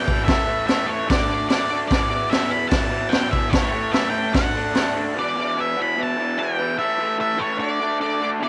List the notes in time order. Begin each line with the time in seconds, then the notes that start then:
Already playing: G5
0.07 E2 B2 E3, kick
0.24 A2 E3 A3 E5, kick, open hi-hat
0.29 snare
0.46 A2 E3 A3
0.66 A2 E3 A3 E5, snare, open hi-hat
0.86 A2 E3 A3 C#5
1.06 D3 A3 D4 D5, kick, open hi-hat
1.11 snare
1.28 D3 A3 D4
1.49 D3 A3 D4 D5, snare, open hi-hat
1.69 D3 A3 D4
1.88 E2 B2 E3 D5, kick, snare, open hi-hat
2.09 E2 B2 E3
2.30 E2 B2 E3 E5, snare, open hi-hat
2.49 E2 B2 E3 B5
2.69 E2 B2 E3 A5, kick, snare, open hi-hat
2.88 E2 B2 E3
3.08 E2 B2 E3 G5, open hi-hat
3.13 snare
3.31 E2 B2 E3 E5, kick
3.50 A2 E3 A3 C#5, kick, snare, open hi-hat
3.69 A2 E3 A3 C#5
3.91 A2 E3 A3 E5, snare, open hi-hat
4.10 A2 E3 A3 G5
4.33 D3 A3 D4 F#5, kick, snare, open hi-hat
4.54 D3 A3 D4
4.73 D3 A3 D4, snare, open hi-hat
4.94 D3 A3 D4
5.14 E2 B2 E3
5.19 D5
5.35 E2 B2 E3
5.56 E2 B2 E3
5.60 E5
5.77 E2 B2 E3
5.82 B5
5.96 E2 B2 E3
6.03 A5
6.17 E2 B2 E3
6.38 E2 B2 E3 G5
6.58 E2 B2 E3
6.77 A2 E3 A3 E5
6.97 A2 E3 A3
7.18 A2 E3 A3 E5
7.37 A2 E3 A3 C#5
7.58 D3 A3 D4 D5
7.80 D3 A3 D4
8.00 D3 A3 D4 D5
8.21 D3 A3 D4
8.40 E2 B2 E3 D5